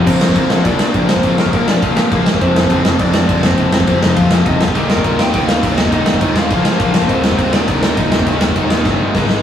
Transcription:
0.06 picked electric bass A#1, distorted electric guitar A#2 F3 A#3, lead electric guitar C4 C5, kick, crash
0.21 snare
0.29 kick
0.35 picked electric bass A#1, distorted electric guitar A#2 F3 A#3, kick, crash
0.50 picked electric bass A#1, snare
0.64 distorted electric guitar A#2 F3 A#3, picked electric bass A#2, lead electric guitar D4 D5, kick, crash
0.79 lead electric guitar D4 D5, snare
0.94 picked electric bass A#1, distorted electric guitar A#2 F3 A#3, kick, crash
1.09 lead electric guitar C4 C5, snare
1.16 kick
1.23 picked electric bass A#1, distorted electric guitar A#2 F3 A#3, kick, crash
1.38 lead electric guitar A#3 A#4, snare
1.46 kick
1.53 picked electric bass A#1, distorted electric guitar A#2 F3 A#3, lead electric guitar A#3 A#4, kick, crash
1.68 picked electric bass A#1, lead electric guitar D4 D5, snare
1.81 distorted electric guitar A#2 F3 A#3, picked electric bass A#2, lead electric guitar F4 F5, kick, crash
1.97 snare
2.12 picked electric bass A#1, distorted electric guitar A#2 F3 A#3, kick, crash
2.26 snare
2.34 kick
2.41 picked electric bass F1, distorted electric guitar F2 C3 F3, lead electric guitar C4 C5, kick, crash
2.56 snare
2.63 kick
2.70 picked electric bass F1, distorted electric guitar F2 C3 F3, kick, crash
2.85 picked electric bass F1, snare
2.99 distorted electric guitar F2 C3 F3, picked electric bass F2, lead electric guitar D4 D5, kick, crash
3.14 lead electric guitar D4 D5, snare
3.28 picked electric bass F1, distorted electric guitar F2 C3 F3, kick, crash
3.43 lead electric guitar C4 C5, snare
3.51 kick
3.58 picked electric bass F1, distorted electric guitar F2 C3 F3, kick, crash
3.73 lead electric guitar C4 C5, snare
3.80 kick
3.87 picked electric bass F1, distorted electric guitar F2 C3 F3, lead electric guitar C4 C5, kick, crash
4.02 picked electric bass F1, lead electric guitar D#4 D#5, snare
4.17 distorted electric guitar F2 C3 F3, picked electric bass F2, lead electric guitar F4 F5, kick, crash
4.31 snare
4.46 picked electric bass F1, distorted electric guitar F2 C3 F3, lead electric guitar D#4 D#5, kick, crash
4.61 picked electric bass D#1, lead electric guitar F4 F5, snare
4.68 kick
4.75 picked electric bass D#1, distorted electric guitar D#2 A#2 D#3, lead electric guitar G4 G5, kick, crash
4.90 lead electric guitar A#4 A#5, snare
4.97 kick
5.04 picked electric bass D#1, distorted electric guitar D#2 A#2 D#3, kick, crash
5.19 picked electric bass D#1, lead electric guitar G4 G5, snare
5.33 distorted electric guitar D#2 A#2 D#3, picked electric bass D#2, lead electric guitar G4 G5, kick, crash
5.48 lead electric guitar F4 F5, snare
5.63 picked electric bass D#1, distorted electric guitar D#2 A#2 D#3, kick, crash
5.77 lead electric guitar D#4 D#5, snare
5.85 kick
5.92 picked electric bass D#1, distorted electric guitar D#2 A#2 D#3, lead electric guitar D#4 D#5, kick, crash
6.06 snare
6.14 kick
6.21 picked electric bass D#1, distorted electric guitar D#2 A#2 D#3, kick, crash
6.36 picked electric bass D#1, lead electric guitar F4 F5, snare
6.50 picked electric bass A#1, distorted electric guitar A#2 F3 A#3, lead electric guitar F4 F5, kick, crash
6.65 snare
6.80 picked electric bass A#1, distorted electric guitar A#2 F3 A#3, kick, crash
6.94 snare
7.02 kick
7.08 picked electric bass D#1, distorted electric guitar D#2 A#2 D#3, lead electric guitar C4 C5, kick, crash
7.24 snare
7.31 kick
7.38 picked electric bass D#1, distorted electric guitar D#2 A#2 D#3, lead electric guitar C4 C5, kick, crash
7.53 picked electric bass D#1, lead electric guitar D4 D5, snare
7.68 distorted electric guitar D#2 A#2 D#3, picked electric bass D#2, kick, crash
7.82 lead electric guitar D4 D5, snare
7.97 picked electric bass D#1, distorted electric guitar D#2 A#2 D#3, lead electric guitar D#4 D#5, kick, crash
8.12 snare
8.19 kick
8.27 picked electric bass D#1, distorted electric guitar D#2 A#2 D#3, kick, crash
8.41 snare
8.49 kick
8.56 picked electric bass D#1, distorted electric guitar D#2 A#2 D#3, kick, crash
8.70 picked electric bass D#1, snare
8.85 picked electric bass G1, distorted electric guitar D#2 A#2 D#3, kick, snare
9.15 picked electric bass G#1, distorted electric guitar G#2 D#3 G#3, kick, snare
9.29 snare

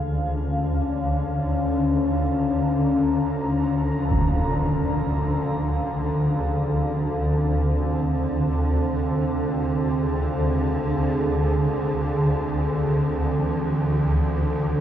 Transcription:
Already playing: synth drone D2 D3, bronze metallophone E3, ambient pad C#4 F5
1.06 ambient pad A#5
2.61 bronze metallophone A3
3.99 bronze metallophone F3
4.11 impact
5.97 ambient pad C4
6.38 bronze metallophone G#4
8.04 ambient pad G#4
13.35 ambient pad C#4
13.39 bronze metallophone E3

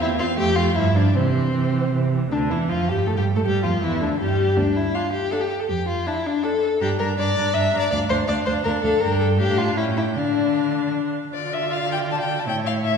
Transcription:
0.01 cello E2, viola C4, violin E4 E5
0.19 viola C4, violin F4 F5
0.37 cello F2, viola A3, violin G4 G5
0.56 viola A3, violin F4 F5
0.75 cello G2, viola F3, violin E4 E5
0.95 viola F3, violin D4 D5
1.14 cello C3, viola E3, violin C4 C5
1.33 viola E3
1.53 cello C3, viola E3
1.73 viola E3
1.92 cello C3, viola E3
2.12 viola E3
2.31 cello D2, viola D3, violin D4
2.50 cello E2, viola E3, violin E4
2.69 cello F2, viola F3, violin F4
2.88 cello G2, viola G3, violin G4
3.06 cello A2, viola A3, violin A4
3.16 cello G2, viola G3, violin G4
3.35 cello A2, viola A3, violin A4
3.45 cello G2, viola G3, violin G4
3.63 cello F2, viola F3, violin F4
3.82 cello E2, viola E3, violin E4
4.01 cello D2, viola D3, violin D4
4.20 cello G2, viola G3, violin G4
4.57 cello D2, violin D4
4.76 violin E4
4.94 viola D4, violin F4 F5
5.12 violin G4
5.31 viola D4, violin A4 F5
5.41 violin G4
5.59 violin A4
5.69 cello F2, violin G4
5.88 violin F4
6.06 viola D4, violin E4 A5
6.26 violin D4
6.43 viola D4, violin A4 A5
6.80 cello G2, viola D4, violin G4 A#5
6.99 cello G2, viola D4, violin A#4 A#5
7.18 cello G2, viola D4, violin D5 A#5
7.36 cello G2, viola D4, violin A#5
7.54 cello G2, viola D4, violin E5 A#5
7.73 cello G2, viola D4, violin A#5
7.79 violin D5
7.91 cello D2, viola D4, violin D5 F5
8.09 cello D2, viola D4, violin C5 F5
8.28 cello D2, viola D4, violin D5 F5
8.46 cello D2, viola D4, violin C5 F5
8.64 cello D2, viola D4, violin A#4 F5
8.82 cello D2, viola D4, violin A4 F5
9.00 cello G2, viola D4, violin A#4 G5
9.20 violin A4
9.38 cello A2, viola D4, violin G4 F5
9.58 violin F4
9.77 cello A2, viola C#4, violin E4 G5
9.97 violin E4
10.16 cello D3, viola D4, violin D4 F5
11.34 cello D3, viola F4, violin D5
11.53 violin E5
11.73 violin F5
11.92 violin G5
12.11 violin A5
12.20 violin G5
12.39 violin A5
12.47 cello A2, viola E4, violin C#5 G5
12.66 violin F5
12.84 violin E5

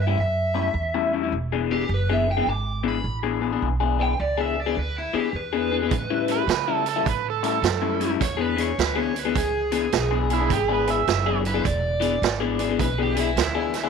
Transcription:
Already playing: upright bass G2
0.02 overdriven electric guitar E5
0.07 clean electric guitar A2 G3 C#4 E4
0.18 upright bass F#2, overdriven electric guitar E5, muted clean electric guitar stroke
0.54 clean electric guitar A2 G3 C#4 E4
0.74 upright bass E2
0.94 clean electric guitar A2 G3 C#4 E4
1.13 clean electric guitar A2 G3 C#4 E4
1.23 clean electric guitar A2 G3 C#4 E4
1.32 upright bass E1
1.52 clean electric guitar E3 B3 D4 G#4
1.70 clean electric guitar E3 B3 D4 G#4, overdriven electric guitar G4
1.89 upright bass F#1
1.94 overdriven electric guitar B4
2.09 clean electric guitar E3 B3 D4 G#4, overdriven electric guitar E5
2.27 muted clean electric guitar stroke
2.32 overdriven electric guitar G5
2.37 clean electric guitar E3 B3 D4 G#4
2.47 upright bass G#1, overdriven electric guitar D6, muted clean electric guitar stroke
2.83 clean electric guitar E3 B3 D4 G#4
2.89 overdriven electric guitar B5
3.04 upright bass A1
3.23 clean electric guitar E3 B3 D4 G#4
3.41 clean electric guitar E3 B3 D4 G#4
3.52 clean electric guitar E3 B3 D4 G#4
3.62 upright bass B1
3.80 clean electric guitar E3 B3 D4 G#4
3.99 clean electric guitar E3 B3 D4 G#4, overdriven electric guitar G5
4.20 upright bass C#2, overdriven electric guitar D5
4.38 clean electric guitar E3 B3 D4 G#4, overdriven electric guitar E5
4.56 overdriven electric guitar D5, muted clean electric guitar stroke
4.66 clean electric guitar E3 B3 D4 G#4
4.76 upright bass D2, overdriven electric guitar B4, muted clean electric guitar stroke
4.98 overdriven electric guitar E4
5.13 clean electric guitar E3 B3 D4 G#4, overdriven electric guitar G4, muted upright bass stroke
5.33 upright bass E2, overdriven electric guitar B4
5.53 clean electric guitar E3 B3 D4 G#4
5.71 clean electric guitar E3 B3 D4 G#4
5.82 clean electric guitar E3 B3 D4 G#4
5.91 upright bass A2, kick, closed hi-hat
6.10 clean electric guitar A2 G3 C#4 E4
6.28 clean electric guitar A2 G3 C#4 E4, electric slide guitar B4, closed hi-hat
6.47 upright bass C#3, snare, closed hi-hat
6.68 clean electric guitar A2 G3 C#4 E4
6.74 electric slide guitar A4
6.86 electric slide guitar A4, muted clean electric guitar stroke, closed hi-hat
6.96 clean electric guitar A2 G3 C#4 E4
7.06 upright bass A2, electric slide guitar B4, muted clean electric guitar stroke, kick, closed hi-hat
7.30 electric slide guitar A4
7.43 clean electric guitar A2 G3 C#4 E4, closed hi-hat
7.49 electric slide guitar A4
7.62 upright bass F#2, snare, closed hi-hat
7.82 clean electric guitar A2 G3 C#4 E4
7.99 clean electric guitar A2 G3 C#4 E4, closed hi-hat
8.09 clean electric guitar A2 G3 C#4 E4
8.21 upright bass E2, overdriven electric guitar C#5, kick, closed hi-hat
8.37 clean electric guitar E3 B3 D4 G#4
8.42 overdriven electric guitar B4
8.56 clean electric guitar E3 B3 D4 G#4, closed hi-hat
8.62 overdriven electric guitar C#5
8.78 upright bass D2, overdriven electric guitar B4, snare, closed hi-hat
8.96 clean electric guitar E3 B3 D4 G#4, overdriven electric guitar C#5
9.14 muted clean electric guitar stroke, closed hi-hat
9.19 overdriven electric guitar B4
9.25 clean electric guitar E3 B3 D4 G#4
9.35 upright bass C#2, overdriven electric guitar G#4, muted clean electric guitar stroke, kick, closed hi-hat
9.72 clean electric guitar E3 B3 D4 G#4, closed hi-hat
9.92 upright bass B1, snare, closed hi-hat
10.11 clean electric guitar E3 B3 D4 G#4
10.30 clean electric guitar E3 B3 D4 G#4, electric slide guitar E4, closed hi-hat
10.40 clean electric guitar E3 B3 D4 G#4
10.50 upright bass G#1, electric slide guitar G4, kick, closed hi-hat
10.68 clean electric guitar E3 B3 D4 G#4, electric slide guitar B4
10.87 clean electric guitar E3 B3 D4 G#4, electric slide guitar E5, closed hi-hat
11.07 upright bass F#1, snare, closed hi-hat
11.26 clean electric guitar E3 B3 D4 G#4
11.44 overdriven electric guitar B4, muted clean electric guitar stroke, closed hi-hat
11.54 clean electric guitar E3 B3 D4 G#4
11.64 upright bass E1, overdriven electric guitar D5, muted clean electric guitar stroke, kick, closed hi-hat
12.00 clean electric guitar E3 B3 D4 G#4, closed hi-hat
12.22 upright bass G#1, snare, closed hi-hat
12.40 clean electric guitar E3 B3 D4 G#4
12.59 clean electric guitar E3 B3 D4 G#4, closed hi-hat
12.70 clean electric guitar E3 B3 D4 G#4
12.79 upright bass B1, overdriven electric guitar B4, kick, closed hi-hat
12.98 clean electric guitar E3 B3 D4 G#4, overdriven electric guitar G4
13.15 clean electric guitar E3 B3 D4 G#4, overdriven electric guitar E4, closed hi-hat
13.36 upright bass D2, overdriven electric guitar E4, snare, closed hi-hat
13.55 clean electric guitar E3 B3 D4 G#4
13.74 muted clean electric guitar stroke, snare, closed hi-hat
13.84 clean electric guitar E3 B3 D4 G#4

